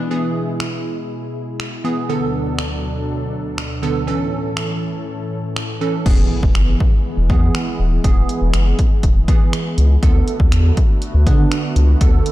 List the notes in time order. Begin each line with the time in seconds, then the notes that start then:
Already playing: B2 G#3 E4 G#4
0.11 E3 B3 G#4
0.60 finger snap
1.60 finger snap
1.84 E3 B3 G#4
2.09 D2 B2 D3 F#3 B3 D4 A4
2.59 finger snap
3.58 finger snap
3.82 D3 B3 A4
4.07 A2 E3 C#4 A4
4.57 finger snap
5.56 finger snap
5.81 E3 C#4 A4
6.06 E1 E3 G#3 B3 G#4, kick, crash, impact
6.43 E1, kick
6.55 F#1, finger snap
6.80 kick
7.17 E1
7.29 E2 E3 B3 G#4, kick
7.55 finger snap
7.80 D#1
8.04 E1 E3 B3 G#4, kick, closed hi-hat
8.29 closed hi-hat
8.42 E1
8.54 F#1, finger snap, closed hi-hat
8.79 kick, closed hi-hat
9.03 E1, kick, closed hi-hat
9.28 E3 B3 G#4, kick, closed hi-hat
9.53 finger snap, closed hi-hat
9.78 C#2, closed hi-hat
10.03 D2 D3 A3 B3 F#4 A4, kick, closed hi-hat
10.28 closed hi-hat
10.40 D2, kick
10.52 E2, finger snap, closed hi-hat
10.77 kick, closed hi-hat
11.02 closed hi-hat
11.14 D2
11.26 D3 B3 D4, kick, closed hi-hat
11.52 finger snap, closed hi-hat
11.76 C#2, closed hi-hat
12.01 D2 D3 B3 A4, kick, closed hi-hat
12.26 closed hi-hat